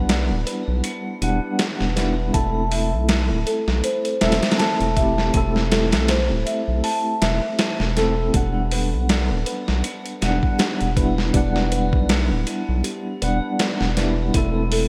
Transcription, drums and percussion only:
0.09 snare loud
0.09 closed hi-hat medium
0.47 closed hi-hat medium
0.84 closed hi-hat medium
1.22 closed hi-hat medium
1.59 snare loud
1.59 closed hi-hat medium
1.80 snare soft
1.97 snare soft
1.97 closed hi-hat medium
2.34 kick loud
2.34 closed hi-hat medium
2.72 open hi-hat medium
3.09 snare loud
3.09 closed hi-hat medium
3.47 closed hi-hat medium
3.68 snare soft
3.84 closed hi-hat medium
4.05 closed hi-hat soft
4.21 snare medium
4.21 closed hi-hat medium
4.32 snare medium
4.32 closed hi-hat medium
4.43 snare medium
4.43 closed hi-hat medium
4.51 snare medium
4.51 closed hi-hat medium
4.59 snare loud
4.59 closed hi-hat medium
4.80 closed hi-hat soft
4.97 kick medium
4.97 closed hi-hat medium
5.18 snare soft
5.34 kick loud
5.34 closed hi-hat medium
5.56 snare soft
5.72 snare loud
5.72 closed hi-hat medium
5.92 snare loud
5.92 closed hi-hat medium
6.08 snare loud
6.08 closed hi-hat medium
6.47 closed hi-hat medium
6.84 open hi-hat medium
7.22 snare loud
7.22 closed hi-hat medium
7.59 snare loud
7.59 closed hi-hat medium
7.80 snare soft
7.97 snare soft
7.97 closed hi-hat medium
8.34 kick loud
8.34 closed hi-hat medium
8.71 open hi-hat medium
9.09 snare loud
9.09 closed hi-hat medium
9.46 closed hi-hat medium
9.68 snare soft
9.84 closed hi-hat medium
10.06 closed hi-hat soft
10.22 snare soft
10.22 closed hi-hat medium
10.43 kick medium
10.59 snare loud
10.59 closed hi-hat medium
10.81 closed hi-hat soft
10.97 kick medium
10.97 closed hi-hat medium
11.18 snare soft
11.34 kick loud
11.34 closed hi-hat medium
11.56 snare soft
11.72 closed hi-hat medium
11.93 kick medium
12.09 snare loud
12.09 closed hi-hat medium
12.47 closed hi-hat medium
12.84 closed hi-hat medium
13.22 closed hi-hat medium
13.59 snare loud
13.59 closed hi-hat medium
13.81 snare soft
13.97 snare soft
13.97 closed hi-hat medium
14.34 kick loud
14.34 closed hi-hat medium
14.72 open hi-hat medium

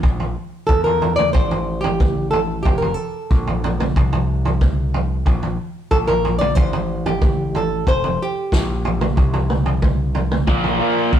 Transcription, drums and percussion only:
0.03 kick loud
0.03 floor tom medium
0.20 floor tom medium
0.69 kick loud
0.86 floor tom medium
1.02 floor tom medium
1.19 floor tom medium
1.19 mid tom medium
1.35 kick loud
1.35 floor tom medium
1.51 floor tom medium
1.84 floor tom medium
2.00 kick loud
2.00 mid tom medium
2.33 floor tom medium
2.65 kick medium
2.65 floor tom medium
2.82 floor tom medium
3.31 kick loud
3.47 floor tom medium
3.64 floor tom medium
3.80 floor tom medium
3.80 mid tom medium
3.96 kick loud
3.96 floor tom medium
4.13 floor tom medium
4.45 floor tom medium
4.61 kick loud
4.61 mid tom medium
4.94 floor tom medium
5.26 kick medium
5.26 floor tom medium
5.43 floor tom medium
5.91 kick medium
6.08 floor tom medium
6.25 floor tom medium
6.41 floor tom medium
6.41 mid tom medium
6.57 kick loud
6.57 floor tom medium
6.73 floor tom medium
7.06 floor tom medium
7.22 kick loud
7.22 mid tom medium
7.55 floor tom medium
7.87 kick medium
7.87 floor tom medium
8.04 floor tom medium
8.52 kick loud
8.52 snare medium
8.85 floor tom medium
9.01 floor tom medium
9.01 mid tom medium
9.17 kick loud
9.17 floor tom medium
9.34 floor tom medium
9.50 mid tom medium
9.66 floor tom medium
9.82 kick medium
9.82 mid tom medium
10.15 floor tom medium
10.31 mid tom medium
10.47 kick medium
10.47 floor tom medium
10.64 floor tom medium
11.13 kick medium

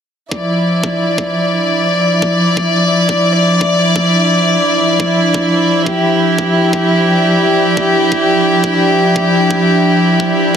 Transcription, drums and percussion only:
0.31 kick loud
0.83 kick loud
1.18 kick loud
2.22 kick loud
2.57 kick loud
3.09 kick loud
3.61 kick loud
3.96 kick loud
5.00 kick loud
5.34 kick loud
5.86 kick loud
6.38 kick loud
6.73 kick loud
7.77 kick loud
8.12 kick loud
8.64 kick loud
9.16 kick medium
9.51 kick loud
10.20 kick medium

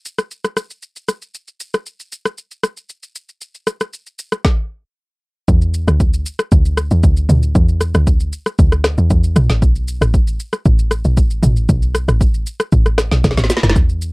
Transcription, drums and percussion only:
0.05 shaker medium
0.18 cross-stick medium
0.18 shaker medium
0.31 shaker medium
0.45 cross-stick medium
0.45 shaker medium
0.57 cross-stick medium
0.57 shaker medium
0.70 shaker medium
0.82 shaker medium
0.96 shaker medium
1.08 cross-stick medium
1.08 shaker loud
1.22 shaker soft
1.34 shaker medium
1.48 shaker soft
1.60 shaker medium
1.74 cross-stick medium
1.74 shaker medium
1.86 shaker medium
2.00 shaker medium
2.12 shaker medium
2.25 cross-stick medium
2.25 shaker medium
2.38 shaker medium
2.51 shaker medium
2.63 cross-stick loud
2.63 shaker medium
2.77 shaker medium
2.89 shaker medium
3.03 shaker medium
3.15 shaker loud
3.29 shaker soft
3.41 shaker medium
3.55 shaker soft
3.67 cross-stick medium
3.67 shaker medium
3.81 cross-stick medium
3.81 shaker medium
3.93 shaker medium
4.06 shaker medium
4.19 shaker medium
4.32 cross-stick medium
4.32 shaker medium
4.45 kick loud
4.45 snare medium
5.48 kick loud
5.48 shaker medium
5.62 shaker soft
5.74 shaker loud
5.88 cross-stick medium
5.88 shaker medium
6.00 kick medium
6.00 shaker medium
6.13 shaker medium
6.26 shaker loud
6.39 cross-stick loud
6.39 shaker medium
6.52 kick loud
6.52 shaker medium
6.65 shaker medium
6.77 cross-stick loud
6.77 shaker medium
6.91 shaker medium
7.03 kick medium
7.03 shaker medium
7.17 shaker medium
7.29 mid tom medium
7.29 shaker loud
7.43 shaker soft
7.55 kick loud
7.55 shaker medium
7.68 shaker soft
7.81 cross-stick medium
7.81 shaker loud
7.95 cross-stick medium
7.95 shaker medium
8.07 kick medium
8.07 shaker medium
8.20 shaker medium
8.33 shaker loud
8.46 cross-stick medium
8.46 shaker medium
8.59 kick loud
8.59 shaker medium
8.72 cross-stick medium
8.72 shaker medium
8.84 cross-stick loud
8.84 snare medium
8.84 shaker medium
8.98 shaker medium
9.10 kick medium
9.10 shaker medium
9.24 shaker medium
9.36 cross-stick medium
9.36 mid tom medium
9.36 shaker loud
9.50 snare medium
9.50 shaker soft
9.62 kick loud
9.62 shaker medium
9.76 shaker soft
9.88 shaker loud
10.02 cross-stick loud
10.02 shaker medium
10.14 kick medium
10.14 shaker medium
10.27 shaker medium
10.40 shaker loud
10.53 cross-stick medium
10.53 shaker medium
10.65 kick loud
10.65 shaker medium
10.79 shaker medium
10.91 cross-stick loud
10.91 shaker medium
11.05 shaker medium
11.17 kick medium
11.17 shaker medium
11.31 shaker medium
11.43 mid tom loud
11.43 shaker loud
11.57 shaker soft
11.69 kick loud
11.69 shaker medium
11.82 shaker soft
11.95 cross-stick loud
11.95 shaker medium
12.08 cross-stick medium
12.08 shaker medium
12.21 kick medium
12.21 shaker medium
12.34 shaker medium
12.46 shaker loud
12.60 cross-stick loud
12.60 shaker medium
12.72 kick loud
12.72 shaker medium
12.86 cross-stick medium
12.86 shaker medium
12.98 cross-stick loud
12.98 snare medium
12.98 shaker medium
13.11 snare medium
13.11 shaker medium
13.24 kick medium
13.24 snare medium
13.24 shaker medium
13.31 snare medium
13.37 snare medium
13.37 shaker medium
13.44 snare medium
13.50 snare medium
13.50 shaker loud
13.57 snare medium
13.63 snare loud
13.63 shaker soft
13.70 snare medium
13.76 kick loud
13.76 shaker medium
13.89 shaker soft
14.02 shaker medium

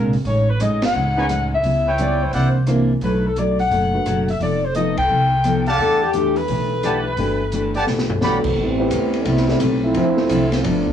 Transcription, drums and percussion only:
0.13 open hi-hat soft
0.25 open hi-hat soft
0.60 closed hi-hat medium
0.82 snare medium
0.82 ride medium
1.29 cross-stick medium
1.29 closed hi-hat medium
1.63 open hi-hat soft
1.98 closed hi-hat soft
2.33 open hi-hat soft
2.67 cross-stick medium
2.67 closed hi-hat medium
3.01 open hi-hat soft
3.36 closed hi-hat soft
3.59 open hi-hat soft
3.72 open hi-hat soft
4.06 cross-stick medium
4.06 closed hi-hat soft
4.28 open hi-hat soft
4.41 open hi-hat soft
4.75 closed hi-hat soft
4.97 kick medium
4.97 ride medium
5.44 cross-stick medium
5.44 closed hi-hat medium
5.67 open hi-hat soft
5.78 open hi-hat soft
6.13 closed hi-hat medium
6.36 open hi-hat soft
6.48 open hi-hat soft
6.83 cross-stick medium
6.83 closed hi-hat soft
7.17 open hi-hat soft
7.52 closed hi-hat medium
7.75 open hi-hat soft
7.87 snare soft
7.98 snare medium
8.10 floor tom medium
8.21 snare medium
8.44 kick medium
8.44 crash medium
8.91 hi-hat pedal medium
8.91 ride medium
9.13 ride soft
9.25 ride medium
9.37 snare soft
9.49 snare soft
9.60 hi-hat pedal medium
9.60 ride medium
9.94 ride medium
10.17 snare medium
10.29 hi-hat pedal medium
10.29 ride medium
10.52 snare medium
10.52 ride soft
10.64 ride medium
10.87 kick medium

